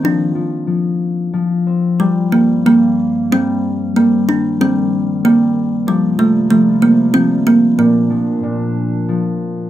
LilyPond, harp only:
\new Staff \with { instrumentName = "Harp" } { \clef bass \time 3/4 \key bes \major \tempo 4 = 93 f8 f8 f4 f8 c'8 | g8 g8 g4 g4 | g8 g8 g4 g4 | f8 f8 f4 f4 |
bes,8 f8 bes,4 f4 | }